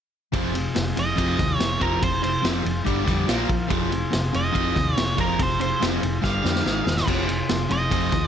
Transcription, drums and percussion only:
0.34 kick loud
0.34 ride loud
0.55 ride medium
0.76 snare loud
0.76 ride loud
0.97 ride medium
1.18 kick medium
1.18 ride loud
1.39 kick medium
1.39 snare soft
1.39 ride medium
1.60 snare loud
1.60 ride loud
1.81 kick medium
1.81 ride medium
2.03 kick loud
2.03 ride loud
2.24 ride medium
2.45 snare loud
2.45 ride loud
2.66 ride medium
2.87 kick medium
2.87 ride medium
3.08 kick medium
3.08 snare soft
3.08 ride medium
3.29 snare loud
3.29 ride medium
3.49 kick medium
3.49 ride medium
3.70 kick loud
3.70 ride loud
3.92 ride medium
4.13 snare loud
4.13 ride loud
4.34 ride medium
4.55 kick medium
4.55 ride medium
4.76 kick medium
4.76 snare soft
4.76 ride medium
4.98 snare loud
4.98 ride loud
5.18 kick medium
5.18 ride medium
5.39 kick loud
5.39 ride loud
5.61 ride medium
5.82 snare loud
5.82 ride loud
6.03 ride medium
6.24 kick medium
6.24 snare medium
6.45 snare medium
6.56 snare medium
6.66 snare medium
6.87 snare loud
6.97 snare medium
7.08 kick loud
7.08 ride medium
7.08 crash loud
7.29 ride medium
7.49 snare loud
7.49 ride medium
7.70 ride medium
7.91 kick medium
7.91 ride loud
8.12 kick medium
8.12 snare soft
8.12 ride medium

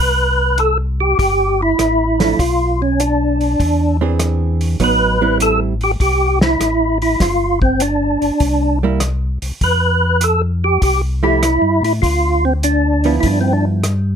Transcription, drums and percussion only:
0.58 closed hi-hat soft
1.19 kick soft
1.19 open hi-hat soft
1.79 cross-stick soft
1.79 closed hi-hat soft
2.20 snare soft
2.20 open hi-hat soft
2.39 kick soft
2.39 open hi-hat soft
3.00 closed hi-hat soft
3.41 open hi-hat soft
3.60 kick soft
3.60 open hi-hat soft
4.20 cross-stick soft
4.20 closed hi-hat soft
4.61 open hi-hat soft
4.80 kick soft
4.80 open hi-hat soft
5.40 closed hi-hat soft
5.81 open hi-hat soft
6.00 kick soft
6.00 open hi-hat soft
6.41 snare soft
6.61 cross-stick soft
6.61 closed hi-hat soft
7.02 open hi-hat soft
7.20 kick soft
7.20 snare soft
7.20 open hi-hat soft
7.62 kick soft
7.80 closed hi-hat soft
8.22 open hi-hat soft
8.40 kick soft
8.40 open hi-hat soft
9.00 cross-stick medium
9.00 closed hi-hat soft
9.42 open hi-hat soft
9.61 kick soft
9.61 open hi-hat soft
10.21 closed hi-hat soft
10.82 kick soft
10.82 open hi-hat soft
11.43 cross-stick medium
11.43 closed hi-hat soft
11.84 open hi-hat soft
12.03 kick soft
12.03 open hi-hat soft
12.63 closed hi-hat soft
13.04 open hi-hat soft
13.23 kick soft
13.23 open hi-hat soft
13.84 cross-stick medium
13.84 closed hi-hat soft

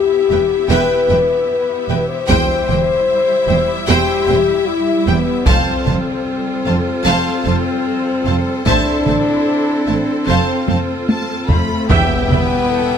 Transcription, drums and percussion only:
2.29 taiko medium
2.69 taiko mid soft
5.46 taiko loud
5.86 taiko mid soft
8.66 taiko loud
9.06 taiko mid soft
10.68 taiko high medium
11.09 taiko high medium
11.49 taiko low medium
11.90 taiko loud
12.30 taiko mid medium

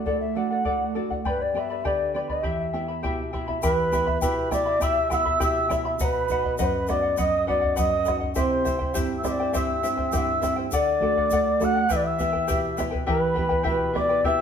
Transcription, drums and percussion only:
0.06 bombo low medium
0.65 bombo low medium
1.11 bombo low medium
1.25 bombo low medium
1.85 bombo low medium
2.29 bombo low soft
2.44 bombo low medium
3.05 bombo low medium
3.35 bombo low medium
3.49 bombo low soft
3.62 bombo low medium
3.62 shaker medium
3.92 bombo low medium
3.92 shaker medium
4.08 bombo low medium
4.22 bombo low medium
4.22 shaker medium
4.52 bombo rim medium
4.52 bombo low medium
4.52 shaker medium
4.81 bombo low medium
4.81 shaker loud
5.11 bombo low medium
5.11 shaker medium
5.26 bombo low medium
5.41 bombo low medium
5.41 shaker medium
5.71 bombo rim medium
5.71 bombo low medium
5.71 shaker medium
5.99 bombo low medium
5.99 shaker loud
6.29 bombo low medium
6.29 shaker medium
6.45 bombo low medium
6.58 bombo low medium
6.58 shaker medium
6.87 bombo rim medium
6.87 bombo low medium
6.87 shaker medium
7.17 bombo low medium
7.17 shaker medium
7.49 bombo low medium
7.64 bombo low medium
7.77 bombo low medium
7.77 shaker medium
8.05 bombo rim medium
8.05 bombo low medium
8.05 shaker medium
8.22 bombo low soft
8.35 bombo low medium
8.35 shaker medium
8.66 bombo low medium
8.66 shaker medium
8.81 bombo low medium
8.95 bombo low medium
8.95 shaker medium
9.24 bombo rim medium
9.24 bombo low medium
9.24 shaker medium
9.54 bombo low medium
9.54 shaker medium
9.84 shaker medium
9.98 bombo low medium
10.12 bombo low medium
10.12 shaker medium
10.43 bombo rim soft
10.43 bombo low soft
10.43 shaker medium
10.72 bombo low medium
10.72 shaker medium
11.02 bombo low soft
11.17 bombo low medium
11.31 bombo low medium
11.31 shaker medium
11.61 bombo rim soft
11.61 bombo low soft
11.61 shaker medium
11.90 bombo low medium
11.90 shaker medium
12.19 bombo low medium
12.19 shaker medium
12.35 bombo low medium
12.48 bombo low medium
12.48 shaker medium
12.77 bombo rim medium
12.77 bombo low medium
12.77 shaker medium
12.95 bombo low medium
13.09 bombo low medium
13.37 bombo low medium
13.52 bombo low medium
13.65 bombo low medium
13.96 bombo rim medium
13.96 bombo low medium
14.24 bombo low medium

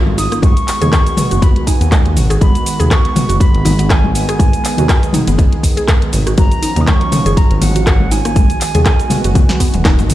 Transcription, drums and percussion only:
0.07 high conga loud
0.18 open hi-hat medium
0.18 shaker loud
0.32 cross-stick medium
0.32 closed hi-hat soft
0.32 shaker soft
0.42 kick loud
0.42 closed hi-hat medium
0.42 high conga loud
0.42 shaker medium
0.57 closed hi-hat soft
0.57 shaker soft
0.68 clap medium
0.68 open hi-hat medium
0.68 shaker loud
0.82 closed hi-hat soft
0.82 mid tom medium
0.82 high conga medium
0.82 shaker soft
0.93 kick loud
0.93 cross-stick loud
0.93 clap loud
0.93 closed hi-hat medium
0.93 shaker medium
1.07 closed hi-hat soft
1.07 shaker soft
1.17 mid tom medium
1.17 open hi-hat medium
1.17 high conga loud
1.17 shaker loud
1.31 closed hi-hat soft
1.31 shaker soft
1.42 kick loud
1.42 closed hi-hat medium
1.42 high conga medium
1.42 low conga medium
1.42 shaker medium
1.56 closed hi-hat soft
1.67 kick medium
1.67 open hi-hat medium
1.67 shaker loud
1.81 closed hi-hat soft
1.81 shaker soft
1.92 kick loud
1.92 cross-stick loud
1.92 clap loud
1.92 closed hi-hat medium
1.92 shaker medium
2.06 closed hi-hat soft
2.17 mid tom medium
2.17 open hi-hat medium
2.17 shaker loud
2.31 cross-stick medium
2.31 closed hi-hat soft
2.31 shaker soft
2.41 kick loud
2.41 closed hi-hat medium
2.41 high conga loud
2.41 shaker medium
2.55 closed hi-hat soft
2.55 shaker soft
2.66 open hi-hat medium
2.66 shaker loud
2.80 closed hi-hat soft
2.80 mid tom medium
2.80 shaker soft
2.91 kick loud
2.91 cross-stick loud
2.91 clap loud
2.91 closed hi-hat medium
2.91 shaker medium
3.05 closed hi-hat soft
3.16 mid tom medium
3.16 open hi-hat medium
3.16 high conga medium
3.16 low conga medium
3.16 shaker medium
3.30 closed hi-hat soft
3.30 shaker soft
3.40 kick loud
3.40 closed hi-hat medium
3.40 high conga medium
3.40 shaker medium
3.55 closed hi-hat soft
3.65 open hi-hat medium
3.65 high conga medium
3.65 low conga medium
3.65 shaker medium
3.79 closed hi-hat soft
3.79 shaker soft
3.90 kick loud
3.90 cross-stick loud
3.90 clap loud
3.90 closed hi-hat medium
3.90 shaker medium
4.04 high conga medium
4.15 open hi-hat medium
4.15 shaker medium
4.29 cross-stick medium
4.29 closed hi-hat soft
4.29 shaker soft
4.39 kick loud
4.39 closed hi-hat medium
4.39 high conga medium
4.39 shaker medium
4.53 closed hi-hat soft
4.53 shaker soft
4.65 clap medium
4.65 open hi-hat medium
4.65 shaker medium
4.77 closed hi-hat soft
4.77 mid tom medium
4.77 high conga medium
4.77 shaker soft
4.89 kick loud
4.89 cross-stick loud
4.89 clap loud
4.89 closed hi-hat medium
4.89 shaker medium
5.03 closed hi-hat soft
5.03 shaker soft
5.13 mid tom medium
5.13 open hi-hat medium
5.13 high conga medium
5.13 shaker medium
5.27 closed hi-hat medium
5.27 shaker soft
5.38 kick loud
5.38 closed hi-hat medium
5.38 high conga medium
5.38 low conga medium
5.38 shaker medium
5.52 closed hi-hat soft
5.63 kick medium
5.63 open hi-hat medium
5.63 shaker medium
5.77 closed hi-hat soft
5.77 shaker soft
5.88 kick loud
5.88 cross-stick loud
5.88 clap loud
5.88 closed hi-hat medium
5.88 shaker medium
6.02 closed hi-hat soft
6.13 mid tom medium
6.13 open hi-hat medium
6.13 shaker medium
6.27 cross-stick medium
6.27 closed hi-hat soft
6.27 shaker soft
6.38 kick loud
6.38 closed hi-hat medium
6.38 high conga loud
6.38 shaker medium
6.51 closed hi-hat soft
6.51 shaker soft
6.63 open hi-hat loud
6.63 shaker medium
6.76 closed hi-hat soft
6.76 mid tom medium
6.76 shaker soft
6.87 kick loud
6.87 cross-stick loud
6.87 clap loud
6.87 closed hi-hat medium
6.87 shaker soft
7.01 closed hi-hat soft
7.12 mid tom medium
7.12 open hi-hat medium
7.12 high conga medium
7.12 low conga medium
7.12 shaker medium
7.26 closed hi-hat soft
7.26 shaker soft
7.37 kick loud
7.37 closed hi-hat medium
7.37 high conga medium
7.37 shaker soft
7.51 closed hi-hat soft
7.61 open hi-hat medium
7.61 high conga medium
7.61 low conga medium
7.61 shaker medium
7.76 closed hi-hat medium
7.76 shaker soft
7.87 kick loud
7.87 cross-stick loud
7.87 clap loud
7.87 closed hi-hat medium
7.87 shaker medium
8.00 high conga loud
8.11 open hi-hat medium
8.11 shaker medium
8.25 cross-stick medium
8.25 closed hi-hat soft
8.25 shaker soft
8.36 kick loud
8.36 closed hi-hat medium
8.36 high conga loud
8.36 shaker medium
8.50 closed hi-hat soft
8.50 shaker soft
8.61 clap medium
8.61 open hi-hat loud
8.61 shaker medium
8.75 closed hi-hat soft
8.75 mid tom medium
8.75 high conga medium
8.75 shaker soft
8.86 kick loud
8.86 cross-stick loud
8.86 clap loud
8.86 closed hi-hat medium
8.86 shaker medium
8.99 closed hi-hat soft
8.99 shaker soft
9.10 mid tom medium
9.10 open hi-hat medium
9.10 high conga medium
9.10 low conga medium
9.10 shaker medium
9.24 closed hi-hat soft
9.24 shaker soft
9.34 kick loud
9.34 closed hi-hat medium
9.34 high tom medium
9.34 high conga medium
9.34 low conga medium
9.34 shaker medium
9.49 snare medium
9.49 closed hi-hat soft
9.49 shaker soft
9.60 kick medium
9.60 open hi-hat loud
9.60 shaker medium
9.74 closed hi-hat soft
9.74 mid tom medium
9.74 shaker soft
9.85 kick loud
9.85 cross-stick loud
9.85 snare medium
9.85 clap loud
9.85 closed hi-hat medium
9.85 shaker medium
9.99 closed hi-hat soft
9.99 shaker soft
10.10 mid tom loud
10.10 open hi-hat medium
10.10 high conga medium
10.10 shaker medium

